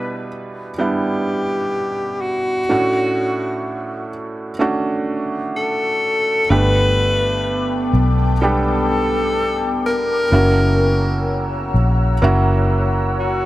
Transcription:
Already playing: felt piano B2 G3 B3 D4 E4, alto saxophone B4
0.78 felt piano G3 B3 D4 E4, alto saxophone G4
2.21 alto saxophone F#4
2.69 felt piano A2 A3 C#4 D4 F#4
4.59 felt piano A3 C#4 D4 F#4
5.57 alto saxophone A4
6.50 fingered electric bass G1, felt piano G2 D3 A3 B3 D4 G4, ambient pad B3 G5 A5 D6, alto saxophone B4
7.93 fingered electric bass B1
8.41 felt piano G3 B3 D4 G4, alto saxophone A4
9.86 alto saxophone A#4
10.31 fingered electric bass F#1, felt piano C#3 A#3 C#4 E4 F#4, ambient pad C#5 F#5 A#5 E6
11.74 fingered electric bass A#1
12.22 fingered electric bass F#1, felt piano A#3 C#4 E4 F#4
13.20 alto saxophone F#4

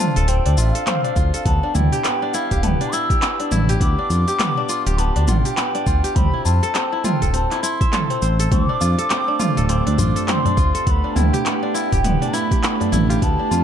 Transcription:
Already playing: kora C4 D4 A4, bansuri A5
0.00 kora F4
0.16 analog synth bass D1, kora A4, open hi-hat, cabasa
0.28 kora C4, bansuri G5, open hi-hat, cabasa
0.46 analog synth bass D2, kora D4, open hi-hat
0.57 analog synth bass A1, kora F4, bansuri E5, cabasa
0.74 kora A4, bansuri F5, open hi-hat, cabasa
0.87 kora C4, clap, mid tom, open hi-hat, cabasa
1.04 kora D4, open hi-hat
1.16 analog synth bass D2, kora F4, kick, cabasa
1.34 kora A4, open hi-hat, cabasa
1.46 analog synth bass D2, kora B3, bansuri A5, kick, open hi-hat, cabasa
1.63 kora D4
1.75 analog synth bass D2, kora E4, bansuri G5, mid tom, cabasa
1.92 kora G4, open hi-hat, cabasa
2.04 kora B3, clap, open hi-hat, cabasa
2.22 kora D4
2.34 kora E4, bansuri F5, cabasa
2.51 analog synth bass D1, kora G4, kick, open hi-hat, cabasa
2.63 kora B3, bansuri A5, mid tom, open hi-hat, cabasa
2.67 bansuri G5
2.81 kora D4, open hi-hat
2.92 kora E4, bansuri E6, cabasa
3.10 kora G4, kick, open hi-hat, cabasa
3.22 kora B3, clap, open hi-hat, cabasa
3.40 kora D4, open hi-hat
3.51 analog synth bass A1, kora E4, mid tom, cabasa
3.69 kora G4, open hi-hat, cabasa
3.81 analog synth bass D2, kora B3, bansuri D6, kick, open hi-hat, cabasa
3.99 kora D4
4.10 analog synth bass F2, kora F4, cabasa
4.28 kora G4, open hi-hat, cabasa
4.39 kora B3, clap, mid tom, open hi-hat, cabasa
4.57 kora D4
4.69 kora F4, cabasa
4.87 analog synth bass D1, kora G4, open hi-hat, cabasa
4.98 kora B3, bansuri A5, open hi-hat, cabasa
5.16 analog synth bass D2, kora D4, open hi-hat
5.27 analog synth bass A1, kora F4, bansuri G5, mid tom, cabasa
5.45 kora G4, open hi-hat, cabasa
5.57 kora B3, clap, open hi-hat, cabasa
5.75 kora D4, open hi-hat
5.87 analog synth bass D2, kora F4, kick, cabasa
6.04 kora G4, open hi-hat, cabasa
6.15 analog synth bass D2, kora C4, bansuri B5, kick, mid tom, open hi-hat, cabasa
6.33 kora E4
6.45 analog synth bass F2, kora F4, bansuri A5, cabasa
6.63 kora A4, open hi-hat, cabasa
6.75 kora C4, clap, open hi-hat, cabasa
6.93 kora E4
7.04 kora F4, bansuri G5, mid tom, cabasa
7.22 analog synth bass D1, kora A4, kick, open hi-hat, cabasa
7.34 kora C4, bansuri A5, open hi-hat, cabasa
7.51 kora E4, clap, open hi-hat
7.63 kora E4, bansuri C6, cabasa
7.81 kora E5, kick, open hi-hat, cabasa
7.93 kora A4, clap, mid tom, open hi-hat, cabasa
8.10 kora C4, open hi-hat
8.22 analog synth bass A1, kora C5, cabasa
8.40 kora A4, open hi-hat, cabasa
8.51 analog synth bass D2, kora C4, bansuri C#6, kick, mid tom, open hi-hat, cabasa
8.64 bansuri D6
8.69 kora D4
8.73 synth drone A3 G4
8.81 analog synth bass F2, kora F4, tabla na, cabasa
8.91 synth drone D4
8.98 kora A4, open hi-hat, tabla tin, cabasa
9.10 kora C4, clap, open hi-hat, cabasa
9.28 kora D4, synth drone C5, tabla na
9.39 kora F4, mid tom, tabla na, cabasa
9.57 analog synth bass D1, kora A4, open hi-hat, cabasa
9.69 kora C4, bansuri D6, open hi-hat, tabla na, cabasa
9.87 analog synth bass D2, kora D4, open hi-hat
9.98 analog synth bass A1, kora F4, tabla ge, cabasa
10.16 kora A4, open hi-hat, cabasa
10.28 kora C4, bansuri C6, clap, mid tom, open hi-hat, cabasa
10.45 kora D4, open hi-hat, tabla tin, tabla ge
10.57 analog synth bass D2, kora F4, kick, cabasa
10.74 kora A4, open hi-hat, tabla tin, cabasa
10.87 analog synth bass D2, kora B3, bansuri B5 C6, kick, open hi-hat, cabasa
11.04 kora D4
11.16 analog synth bass D2, kora E4, bansuri G5, mid tom, tabla na, cabasa
11.33 kora G4, open hi-hat, cabasa
11.45 kora B3, clap, open hi-hat, cabasa
11.55 synth drone B4
11.63 kora D4, tabla na
11.74 kora E4, tabla na, cabasa
11.92 analog synth bass D1, kora G4, kick, open hi-hat, tabla ge, cabasa
12.04 kora B3, mid tom, open hi-hat, cabasa
12.22 kora D4, open hi-hat
12.33 kora E4, bansuri B5, tabla tin, cabasa
12.51 kora G4, kick, open hi-hat, cabasa
12.63 kora B3, clap, open hi-hat, cabasa
12.80 kora D4, open hi-hat, tabla tin, tabla ge
12.92 analog synth bass A1, kora E4, mid tom, cabasa
13.10 kora G4, open hi-hat, tabla na, cabasa
13.22 analog synth bass D2, kora B3, bansuri A5, kick, open hi-hat, cabasa
13.39 kora D4
13.51 analog synth bass F2, kora F4, tabla na, cabasa

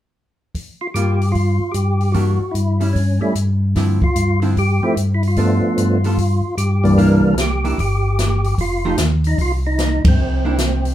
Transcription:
0.55 kick, open hi-hat
0.81 tonewheel organ F4
0.94 tonewheel organ G2 G4, hollow-body jazz guitar G3 A#3 F4, closed hi-hat
1.22 open hi-hat
1.32 tonewheel organ F4, kick, open hi-hat
1.72 tonewheel organ G2 G4, closed hi-hat
2.01 open hi-hat
2.12 hollow-body jazz guitar E3 A#3 D4 G4, tonewheel organ F#4, kick, open hi-hat
2.51 tonewheel organ G2 E4, closed hi-hat
2.80 hollow-body jazz guitar G3 C#4 E4, open hi-hat
2.93 tonewheel organ C#4, kick, open hi-hat
3.21 tonewheel organ G3 A3 C#4 E4
3.35 tonewheel organ G2, closed hi-hat
3.76 hollow-body jazz guitar D3 F3 C4 E4, kick, snare, open hi-hat
4.02 tonewheel organ F4, kick
4.16 tonewheel organ G2, closed hi-hat
4.42 hollow-body jazz guitar D3 F3 C4 E4, open hi-hat
4.56 tonewheel organ G4, kick, open hi-hat
4.83 tonewheel organ F3 A3 C4 E4
4.96 tonewheel organ G2, closed hi-hat
5.15 tonewheel organ E4
5.23 open hi-hat
5.28 tonewheel organ F4
5.36 tonewheel organ F3 A3 B3 D4, hollow-body jazz guitar G3 B3 F4 A4, kick, open hi-hat
5.77 tonewheel organ G2, closed hi-hat
6.04 hollow-body jazz guitar G3 B3 F4 A4, open hi-hat
6.18 kick, open hi-hat
6.57 tonewheel organ G2 G4, closed hi-hat
6.83 tonewheel organ C2 E3 G3 A#3 D4, open hi-hat
6.98 tonewheel organ C2 A#4, hollow-body jazz guitar A#3 D4 E4, kick, open hi-hat
7.38 tonewheel organ G4, snare, closed hi-hat
7.64 hollow-body jazz guitar A#3 D4 E4, open hi-hat
7.78 tonewheel organ G1 G4, kick, open hi-hat
8.19 snare, closed hi-hat
8.44 open hi-hat
8.58 tonewheel organ F1 F4, kick, open hi-hat
8.85 hollow-body jazz guitar F3 A3 D#4 G4
8.98 tonewheel organ D#2, snare, closed hi-hat
9.24 tonewheel organ D#4, open hi-hat
9.38 tonewheel organ C2 F4, kick, open hi-hat
9.67 tonewheel organ D#4
9.79 snare, closed hi-hat
10.04 tonewheel organ G2 C4, kick, ride
10.19 tonewheel organ C2
10.45 hollow-body jazz guitar A#3 D4 E4
10.58 snare, closed hi-hat
10.85 open hi-hat

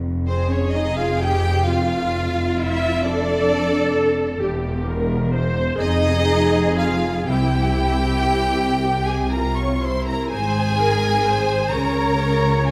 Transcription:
Already playing: double bass section F1, cello section F2
0.27 violin section C4 C5, viola section G#4
0.52 violin section C#4 C#5
0.73 violin section D#4 D#5
0.98 violin section F4 F5
1.22 violin section G4 G5
1.67 viola section F4, violin section F4 F5
2.60 violin section E4 E5
3.04 violin section D4 D5, viola section A4
4.41 double bass section E1, cello section E2, viola section G4
4.87 viola section A#4
5.33 viola section C5
5.79 double bass section F1, cello section F2, violin section D#4 D#5, viola section G#4
6.78 violin section F4 F5
7.27 double bass section C2, cello section C3, viola section E4, violin section G4 G5
8.81 viola section G4
9.06 violin section G#4 G#5
9.32 viola section F4, violin section A#4 A#5
9.59 violin section C#5 C#6
9.84 viola section E4, violin section C5 C6
10.08 violin section A#4 A#5
10.31 double bass section G#1, cello section G#2, violin section G#4 G#5, viola section C5
10.79 viola section A#4
11.26 viola section C5
11.73 double bass section C#2, cello section C#3, violin section A#4 A#5, viola section C#5
12.67 violin section G#4 G#5

